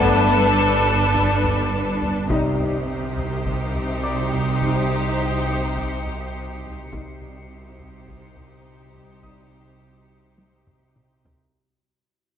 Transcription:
Already playing: G1 G2 D4 A4 B4 G6 G#6
0.00 A3 B3
1.15 taiko
1.44 taiko low
2.01 taiko low
2.30 C2 C3 G3 D#4 G4 C5 C7, taiko
2.59 taiko low
3.17 taiko low
3.46 C#7, taiko
3.75 taiko low
4.03 D5 D6
4.33 taiko low
4.62 G3 D#4, taiko
5.77 taiko
6.06 taiko low
6.63 taiko low
6.92 C2 C3 G3 D#4 G4 C5, taiko
7.21 taiko low
7.79 taiko low
8.08 taiko
8.36 taiko low
8.94 taiko low
9.23 G3 D#4 D#6, taiko
10.38 taiko high
10.67 taiko low-mid
10.96 taiko mid
11.25 taiko low

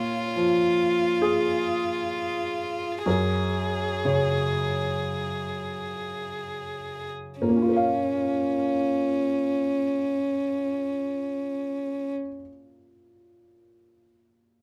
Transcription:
Already playing: A#2 F4 C#5
0.36 F3
1.22 G#4
3.06 F#2 G#4 A#4
4.05 C#3 C#5
7.41 A#2 C#4 A#4
7.48 A#3
7.56 C#4
7.62 F4
7.69 A#4
7.77 F5

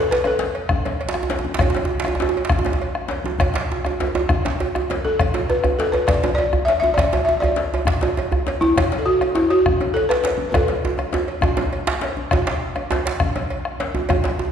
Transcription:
0.11 B4, djembe slap
0.24 A4, bombo rim, cowbell, djembe tone
0.39 djembe slap
0.55 cowbell, djembe slap
0.69 bombo rim, bombo low, djembe bass
0.85 cowbell, djembe slap, djembe tone
1.00 bombo rim, cowbell
1.09 djembe slap
1.14 bombo rim, djembe slap, djembe tone
1.23 djembe tone
1.30 cowbell, djembe slap, djembe tone
1.39 djembe tone
1.45 djembe slap, djembe tone
1.54 djembe slap
1.59 bombo rim, bombo low, cowbell, djembe tone, djembe bass
1.70 djembe tone
1.75 cowbell, djembe slap, djembe tone
1.85 djembe tone
2.00 djembe slap
2.04 bombo rim, cowbell, djembe tone
2.08 djembe tone
2.15 djembe tone
2.20 djembe slap, djembe tone
2.29 djembe tone
2.36 cowbell, djembe slap
2.45 djembe slap
2.50 bombo rim, bombo low, djembe tone, djembe bass
2.59 djembe tone
2.65 cowbell, djembe slap, djembe tone
2.73 djembe tone
2.81 bombo rim, cowbell
2.95 bombo rim, djembe slap
3.08 cowbell, djembe slap
3.24 djembe slap, djembe tone
3.39 bombo rim, bombo low, cowbell, djembe slap, djembe tone, djembe bass
3.54 djembe slap
3.55 cowbell, djembe slap
3.70 bombo rim, djembe tone
3.85 bombo rim, cowbell, djembe tone
4.00 djembe slap, djembe tone
4.15 bombo rim, cowbell, djembe tone
4.29 bombo rim, bombo low, djembe tone, djembe bass
4.45 cowbell, djembe slap, djembe tone
4.60 cowbell, djembe tone
4.75 bombo rim, djembe tone
4.90 cowbell, djembe slap, djembe tone
5.05 A4, bombo rim, djembe tone
5.20 bombo rim, bombo low, cowbell, djembe bass
5.34 cowbell, djembe slap, djembe tone
5.50 B4, djembe tone
5.64 bombo rim, cowbell, djembe tone, djembe bass
5.79 A4, djembe slap
5.92 B4, cowbell, djembe slap, djembe tone
6.07 D5, bombo rim, bombo low, djembe slap, djembe bass
6.23 cowbell, djembe slap, djembe tone
6.35 D5, bombo rim, cowbell, djembe tone
6.53 bombo rim, djembe slap, djembe bass
6.65 E5, djembe slap
6.70 cowbell
6.80 E5, djembe slap, djembe tone
6.94 D5, bombo rim, bombo low, djembe bass
6.98 cowbell, djembe slap
7.13 cowbell, djembe slap, djembe tone
7.25 E5, djembe tone
7.40 D5, bombo rim, cowbell, djembe tone, djembe bass
7.56 djembe slap
7.71 cowbell, djembe slap, djembe tone
7.85 bombo rim, bombo low, djembe slap, djembe bass
8.01 cowbell, djembe slap, djembe tone
8.17 bombo rim, cowbell, djembe tone
8.32 bombo rim, djembe slap, djembe bass
8.47 cowbell, djembe slap
8.61 E4, djembe slap, djembe tone
8.76 bombo rim, bombo low, cowbell, djembe slap, djembe bass
8.92 cowbell, djembe slap
8.99 A4
9.06 F#4
9.21 bombo rim, cowbell, djembe tone
9.35 E4, djembe slap
9.50 F#4, cowbell, djembe slap
9.66 bombo rim, bombo low, djembe bass
9.80 cowbell, djembe slap, djembe tone
9.94 A4, bombo rim, cowbell
10.09 B4, bombo rim, djembe slap
10.11 djembe slap
10.24 cowbell, djembe slap
10.38 djembe slap, djembe tone
10.49 B4, djembe slap, djembe bass
10.54 A4, bombo rim, bombo low, cowbell, djembe tone
10.68 cowbell, djembe slap
10.85 djembe tone
10.97 bombo rim, cowbell, djembe tone
11.13 djembe slap, djembe tone
11.28 cowbell
11.41 bombo rim, bombo low, djembe tone, djembe bass
11.57 cowbell, djembe slap, djembe tone
11.73 cowbell
11.87 bombo rim, djembe slap
12.01 cowbell, djembe slap
12.17 djembe tone
12.31 bombo rim, bombo low, cowbell, djembe tone, djembe bass
12.47 cowbell, djembe slap
12.76 bombo rim, cowbell, djembe tone
12.91 djembe slap, djembe tone
13.06 cowbell, djembe slap
13.20 bombo rim, bombo low, djembe bass
13.36 cowbell, djembe slap, djembe tone
13.50 bombo rim, cowbell
13.65 bombo rim, djembe slap
13.80 cowbell, djembe slap
13.95 djembe slap, djembe tone
14.09 bombo rim, bombo low, cowbell, djembe tone, djembe bass
14.24 cowbell, djembe slap, djembe tone
14.39 djembe tone

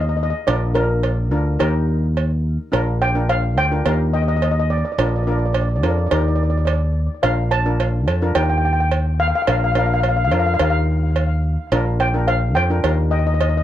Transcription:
Already playing: D#2 D#4 G4 A#4
0.01 D#5
0.09 D#5
0.17 D#5
0.23 D#5
0.30 D#5
0.47 A#1 D4 F4 A#4 D5, cowbell
0.75 D4 F4 A#4, cowbell
1.04 cowbell
1.31 D2 D4 F4 A#4
1.59 D#2 D#4 G4 A#4, cowbell
2.17 cowbell
2.72 A#1 D4 F4 A#4, cowbell
3.02 G5, cowbell
3.15 D4 F4 A#4
3.29 F5, cowbell
3.57 D2 G5, cowbell
3.71 D4 F4 A#4
3.85 D#2 D#4 G4 A#4, cowbell
4.13 D#5
4.22 D#5
4.28 D#5
4.37 D#5
4.42 D#5, cowbell
4.51 D#5
4.60 D#5
4.70 D5
4.78 D5
4.85 D5
4.92 D5
4.98 A#1 D4 F4 A#4 D5, cowbell
5.08 D5
5.16 D5
5.23 D4 D5
5.27 F4 A#4
5.32 D5
5.38 D5
5.46 D5
5.53 D5, cowbell
5.61 D5
5.69 D5
5.76 D5
5.83 F2 D4 F4 A#4 D5, cowbell
5.90 D5
5.98 D5
6.06 D5
6.11 D#2 D#4 G4 A#4 D5, cowbell
6.21 D5
6.28 D5
6.36 D5
6.43 D5
6.50 D5
6.58 D5
6.65 D5, cowbell
6.73 D5
7.23 A#1 D4 F4 A#4 F5, cowbell
7.51 A5, cowbell
7.65 D4 F4 A#4
7.80 cowbell
8.07 F2, cowbell
8.22 D4 F4 A#4
8.35 D#2 D#4 G4 A#4 G5, cowbell
8.43 G5
8.50 G5
8.58 G5
8.65 G5
8.73 G5
8.80 G5
8.91 cowbell
9.20 F5
9.28 F5
9.35 F5
9.42 F5
9.47 A#1 D4 F4 A#4 F5, cowbell
9.56 F5
9.64 F5
9.72 D4 F5, cowbell
9.76 F4 A#4 F5
9.86 F5
9.94 F5
10.00 F5, cowbell
10.09 F5
10.17 F5
10.25 F5
10.32 F2 D4 F4 A#4 F5, cowbell
10.40 F5
10.46 F5
10.54 F5
10.59 D#2 D#4 G4 A#4 F5, cowbell
10.70 F5
11.16 cowbell
11.72 A#1 D4 F4 A#4, cowbell
12.00 G5, cowbell
12.14 D4 F4 A#4
12.28 F5, cowbell
12.55 F2 G5, cowbell
12.70 D4 F4 A#4
12.84 D#2 D#4 G4 A#4, cowbell
13.11 D#5
13.19 D#5
13.27 D#5
13.34 D#5
13.41 D#5, cowbell
13.49 D#5
13.57 D#5

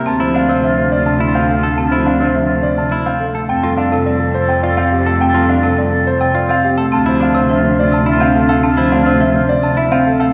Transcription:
Already playing: A#3 A#4
0.06 D2 C4 F4 A5
0.20 F3 E4 C5
0.34 C4 D4 F4 F5
0.49 C3 C5
0.63 F3 F4 E5
0.78 C5
0.92 F4 D5
1.06 C3 A5
1.20 E4
1.26 F4
1.35 C4 F5
1.49 A4
1.56 F4
1.63 A3 A4
1.77 C4 A5
1.85 F4
1.91 F3 E4 C5
2.06 C4 D4 F5
2.16 F4
2.20 C3 C5
2.35 F3 E5
2.45 F4
2.50 C5
2.63 D5
2.75 C3 F4 A5
2.92 E4
3.06 C4 F4 F5
3.20 A4
3.35 A3 A4
3.49 F2 C4 A4 G5
3.63 G3 F4 A4
3.77 C4 D4 A4 F5
3.92 C3 A4
4.06 G3 D5
4.10 A4
4.20 A4
4.34 C5
4.39 A4
4.49 C3 G5
4.63 F4 D5
4.69 A4
4.77 C4 F5
4.92 G4
4.99 A4
5.06 A3 A4
5.21 C4 G5
5.29 A4
5.34 G3 F4 A4
5.49 C4 D4 F5
5.58 A4
5.63 C3 A4
5.78 G3 D5
5.88 A4
6.07 C5
6.18 C3 A4 G5
6.35 F4 D5
6.48 C4 A4 F5
6.64 G4
6.78 A3 A4
6.92 D2 C4 F4 A5
7.06 F3 E4 C5
7.20 C4 D4 F4 F5
7.34 C3 C5
7.49 F3 F4 E5
7.65 C5
7.79 F4 D5
7.92 C3 A5
8.06 E4 E5
8.11 F4
8.20 C4 F5
8.35 A4
8.41 F4
8.49 A3 A4 F5
8.63 C4 A5
8.71 F4
8.77 F3 E4 C5
8.92 C4 D4 F5
9.02 F4
9.06 C3 C5
9.21 F3 E5
9.30 F4
9.34 C5
9.49 D5
9.60 C3 F4 A5
9.77 E4 E5
9.91 C4 F4 F5
10.07 A4
10.20 A3 A4 F5

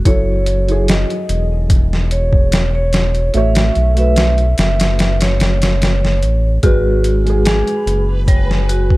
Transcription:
0.05 F#1 F#3 E4 A4 C#5, kick, closed hi-hat
0.46 closed hi-hat
0.67 F#3 E4, closed hi-hat
0.72 G#4
0.88 D#5, snare, closed hi-hat
1.10 closed hi-hat
1.29 E1, closed hi-hat
1.70 kick, closed hi-hat
1.93 snare
2.11 C#5, closed hi-hat
2.33 kick
2.52 snare, closed hi-hat
2.75 C#5
2.93 snare, closed hi-hat
3.15 closed hi-hat
3.34 A1 A3 F#4 C#5 E5, closed hi-hat
3.55 snare, closed hi-hat
3.75 B1, closed hi-hat
3.95 A3 F#4 E5, closed hi-hat
3.99 B4
4.16 snare, closed hi-hat
4.38 closed hi-hat
4.58 F#1 E5, snare, closed hi-hat
4.80 snare, closed hi-hat
4.99 snare, closed hi-hat
5.21 C#5, snare, closed hi-hat
5.40 F#1, snare, closed hi-hat
5.62 snare, closed hi-hat
5.82 snare, closed hi-hat
6.05 snare
6.23 A1, closed hi-hat
6.63 G#1 G#3 F#4 G#4 B4, kick, closed hi-hat
7.04 closed hi-hat
7.25 G#3 F#4, closed hi-hat
7.30 G#4
7.45 G#4 G#5, snare, closed hi-hat
7.67 closed hi-hat
7.86 F#1, closed hi-hat
8.28 C#5, kick, closed hi-hat
8.51 snare
8.69 F#4, closed hi-hat
8.90 kick

